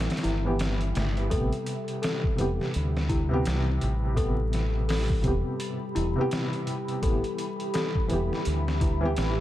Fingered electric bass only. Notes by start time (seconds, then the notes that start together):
0.25 G1
0.96 G1
1.32 A1
2.40 E1
2.76 D2
3.47 C2
3.83 A1
5.24 E1
5.97 E1
7.03 A1
8.12 E1
8.47 D2
9.18 A1